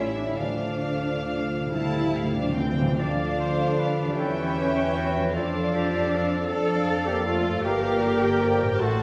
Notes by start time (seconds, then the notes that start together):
Already playing: A1 A2 G3 A3 C#4 G4 C#5 E5
0.08 E4
0.18 D4
0.29 E4
0.38 D2 D3 F3 A3 D4 D5 F5
0.57 D3
0.65 D3
0.74 D3
0.83 D3 A3
1.08 D3
1.16 D3
1.28 F4
1.33 D3
1.42 D3
1.50 D3
1.58 D3
1.67 D3
1.71 D3 G3 E4 A4 E5 A5
1.83 D3
1.91 D3
1.99 D3
2.08 D3
2.16 D3 F4 F5
2.24 D3
2.32 D3
2.37 D3 F3 D4 D5
2.49 D3
2.57 D3 E3 C4 D4 C5 G5
2.65 D3
2.73 D3
2.82 D3
2.87 D3 A3
2.91 D4
2.96 D2 F3 D4 F4 D5
3.00 D3 A4 D5 F5
3.40 C5
3.79 B4
4.01 E2
4.05 G3
4.09 G4
4.18 E2 E3 G3 C#4 A4 C#5 E5 G5
4.57 F#3 G4
4.96 E3 F#4
5.16 F2
5.21 A3
5.25 F4
5.34 F2 F3 D4 F4 A4 D5 F5
5.73 G3 G4
6.12 F3 A4
6.50 D4 A4 D5 F5 A5
7.07 A#3 G4 G5
7.26 A3 F4 F5
7.47 G2
7.52 A#3
7.56 F4
7.61 A#3 G4 A#4 D5 G5
7.65 G1 E3 A#4 D5 F5
8.03 D3
8.23 G5
8.41 F3
8.61 A2
8.66 A3
8.71 G4 A4
8.75 A4 C5
8.79 A1 A3 F#4 A4 C5 F#5 A5